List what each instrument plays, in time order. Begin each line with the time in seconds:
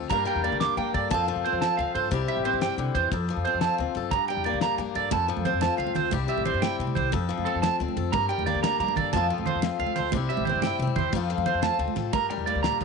0.09 steel-string acoustic guitar G2 G3 A#3 D4 A#4, upright bass G2, clean electric guitar A#5, kick, ride
0.25 steel-string acoustic guitar G3, clean electric guitar G5, ride
0.35 upright bass E2
0.44 steel-string acoustic guitar A#3, clean electric guitar D5, ride
0.52 upright bass D2
0.60 steel-string acoustic guitar D4, clean electric guitar D6, snare, ride
0.77 upright bass G3, steel-string acoustic guitar A#3, clean electric guitar G5, ride
0.94 upright bass G2, steel-string acoustic guitar A4, clean electric guitar D5, kick, ride
1.11 upright bass F2, steel-string acoustic guitar F3 C4 F4 A4, clean electric guitar A5, muted steel-string acoustic guitar stroke, kick, ride
1.28 steel-string acoustic guitar F3, ride
1.36 upright bass F2
1.44 steel-string acoustic guitar C4, clean electric guitar C5, ride
1.53 upright bass F2
1.61 steel-string acoustic guitar F4, clean electric guitar A5, snare, ride
1.77 upright bass D2, steel-string acoustic guitar C4, clean electric guitar F5, ride
1.95 upright bass G2, steel-string acoustic guitar A4, clean electric guitar C5, ride
2.11 upright bass C2, steel-string acoustic guitar C3 G3 C4 E4 G4, kick, ride
2.28 steel-string acoustic guitar G3, clean electric guitar E5, ride
2.37 upright bass A1
2.45 steel-string acoustic guitar C4, clean electric guitar C5, ride
2.53 upright bass G2
2.61 steel-string acoustic guitar C3, clean electric guitar G5, snare, ride
2.78 upright bass C3, steel-string acoustic guitar D3, ride
2.95 upright bass E2, steel-string acoustic guitar E3, clean electric guitar C5, kick, ride
3.12 upright bass F2, steel-string acoustic guitar F2 A4, kick, ride
3.29 steel-string acoustic guitar F3, ride
3.37 upright bass F2
3.45 steel-string acoustic guitar C4, clean electric guitar C5, ride
3.54 upright bass F2
3.61 steel-string acoustic guitar F4, clean electric guitar A5, snare, ride
3.78 upright bass D2, steel-string acoustic guitar C4, ride
3.95 upright bass F#2, steel-string acoustic guitar A4, ride
4.11 upright bass G2, steel-string acoustic guitar G2, clean electric guitar A#5, muted steel-string acoustic guitar stroke, kick, ride
4.28 steel-string acoustic guitar G3, clean electric guitar G5, ride
4.37 upright bass E2
4.44 steel-string acoustic guitar A#3, clean electric guitar D5, ride
4.53 upright bass D2
4.61 steel-string acoustic guitar D4, clean electric guitar A#5, snare, ride
4.78 upright bass G3, steel-string acoustic guitar A#3, muted clean electric guitar stroke, ride
4.95 upright bass G2, steel-string acoustic guitar A4, clean electric guitar D5, ride
5.11 steel-string acoustic guitar F2 A4, upright bass F2, clean electric guitar A5, kick, ride, muted conga, low conga
5.28 steel-string acoustic guitar F3, ride
5.37 upright bass F2, high conga
5.45 steel-string acoustic guitar C4, clean electric guitar C5, ride, low conga
5.54 upright bass F2
5.61 steel-string acoustic guitar F4, clean electric guitar A5, snare, ride, muted conga
5.78 upright bass D2, steel-string acoustic guitar C4, clean electric guitar F5, ride
5.87 high conga
5.95 upright bass D2, steel-string acoustic guitar A4, clean electric guitar C5, snare, ride, low conga
6.11 upright bass C2, steel-string acoustic guitar C3 G3 C4 E4 G4, kick, ride, muted conga
6.28 steel-string acoustic guitar G3, clean electric guitar E5, ride
6.37 upright bass A1, high conga
6.45 steel-string acoustic guitar C4, clean electric guitar C5, ride, low conga
6.54 upright bass G2
6.62 steel-string acoustic guitar E4, clean electric guitar G5, snare, ride, muted conga
6.79 upright bass C3, steel-string acoustic guitar C4, ride, low conga
6.87 high conga, low conga
6.95 upright bass C2, steel-string acoustic guitar G4, clean electric guitar C5, kick, ride, low conga
7.12 steel-string acoustic guitar F2 A4, upright bass F2, kick, ride, muted conga, low conga
7.29 steel-string acoustic guitar F3, ride
7.38 upright bass F2, high conga
7.45 steel-string acoustic guitar C4, clean electric guitar A4, ride
7.55 upright bass F2
7.62 clean electric guitar A5, muted steel-string acoustic guitar stroke, snare, ride, muted conga
7.80 upright bass D2, steel-string acoustic guitar C4, ride
7.88 high conga
7.96 upright bass F2, steel-string acoustic guitar A4, ride, low conga
8.12 steel-string acoustic guitar G2 A#4, upright bass G2, clean electric guitar A#5, kick, ride, muted conga
8.29 steel-string acoustic guitar G3, clean electric guitar G5, ride
8.38 upright bass E2, high conga
8.46 steel-string acoustic guitar A#3, clean electric guitar D5, ride, low conga
8.54 upright bass D2
8.63 steel-string acoustic guitar D4, clean electric guitar A#5, snare, ride, muted conga
8.80 upright bass G3, steel-string acoustic guitar A#3, clean electric guitar A#5, ride, low conga
8.88 high conga, low conga
8.96 upright bass G2, steel-string acoustic guitar A4, clean electric guitar D5, kick, ride, low conga
9.13 upright bass F2, steel-string acoustic guitar F2 F3 C4 F4, clean electric guitar A5, kick, ride, muted conga, low conga
9.17 steel-string acoustic guitar A4
9.30 steel-string acoustic guitar F3, ride
9.38 upright bass F2, high conga
9.46 steel-string acoustic guitar C4, clean electric guitar C5, ride, low conga
9.55 upright bass F2
9.62 steel-string acoustic guitar F4, snare, ride, muted conga
9.79 upright bass D2, steel-string acoustic guitar C4, clean electric guitar F5, ride
9.86 high conga
9.96 upright bass D2, steel-string acoustic guitar A4, clean electric guitar C5, snare, ride, low conga
10.12 upright bass C2, steel-string acoustic guitar C3 G3 C4 E4, kick, ride, muted conga
10.17 steel-string acoustic guitar G4
10.29 steel-string acoustic guitar G3, clean electric guitar E5, ride
10.37 upright bass A1, high conga
10.45 clean electric guitar C5, ride, low conga
10.49 steel-string acoustic guitar C4
10.55 upright bass G2
10.62 clean electric guitar G5, snare, ride, muted conga
10.66 steel-string acoustic guitar E4
10.79 upright bass C3, steel-string acoustic guitar C4, ride, low conga
10.87 high conga, low conga
10.96 upright bass E2, steel-string acoustic guitar G4, clean electric guitar C5, kick, ride, low conga
11.13 upright bass F2, steel-string acoustic guitar F2 F3 C4 F4, kick, ride, muted conga
11.17 steel-string acoustic guitar A4
11.30 steel-string acoustic guitar F3, ride
11.37 upright bass F2, high conga
11.46 steel-string acoustic guitar C4, clean electric guitar C5, ride, low conga
11.54 upright bass F2
11.62 steel-string acoustic guitar F4, clean electric guitar A5, snare, ride, muted conga, low conga
11.72 low conga
11.79 upright bass D2, steel-string acoustic guitar C4, ride
11.88 high conga
11.96 upright bass A2, steel-string acoustic guitar A4, snare, ride, low conga
12.13 upright bass G2, steel-string acoustic guitar G2 A#4, clean electric guitar A#5, kick, ride, muted conga
12.30 steel-string acoustic guitar G3, muted clean electric guitar stroke, ride, high conga
12.38 upright bass E2
12.46 steel-string acoustic guitar A#3, clean electric guitar D5, ride, high conga
12.55 upright bass D2
12.63 steel-string acoustic guitar A#2, clean electric guitar A#5, snare, ride, high conga
12.80 steel-string acoustic guitar A2, upright bass G3, ride, low conga